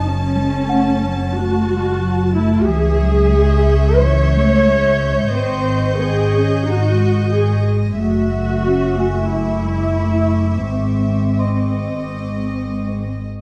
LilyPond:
<<
  \new Staff \with { instrumentName = "Violin section" } { \time 4/4 \key fis \dorian \tempo 4 = 90 << { r1 | r4 g'''2.~ | g'''2.~ g'''8 r8 | r4 d'''2.~ |
d'''2.~ d'''8 r8 | } \\ { r1 | cis'''1~ | cis'''2.~ cis'''8 r8 | cis'''1~ |
cis'''2.~ cis'''8 r8 | } >> }
  \new Staff \with { instrumentName = "Celesta" } { \time 4/4 \key fis \dorian r4 fis''2. | r1 | r1 | r4. gis''2~ gis''8~ |
gis''8 r8 <dis'' bis''>2. | }
  \new Staff \with { instrumentName = "Violin section" } { \time 4/4 \key fis \dorian a''1 | e''1 | dis''1 | e''1~ |
e''4 dis''2~ dis''8 r8 | }
  \new Staff \with { instrumentName = "Viola section" } { \time 4/4 \key fis \dorian cis'2 fis'4. e'8 | gis'2 cis''2 | bis'4 gis'4 fis'4 gis'8 r8 | fis'2 e'2 |
bis2.~ bis8 r8 | }
  \new Staff \with { instrumentName = "Cello section" } { \time 4/4 \key fis \dorian fis8 gis8 a8 fis8 a8 gis8 fis8 a8 | e8 fis8 gis4 e8 a8 gis4 | bis4 bis8 cis'8 dis'8 gis4. | a8 a8 cis'8 a8 a8 gis8 a4 |
gis2.~ gis8 r8 | }
  \new Staff \with { instrumentName = "Double bass section" } { \clef bass \time 4/4 \key fis \dorian fis,,1 | cis,1 | gis,,1 | fis,,1 |
gis,,2.~ gis,,8 r8 | }
>>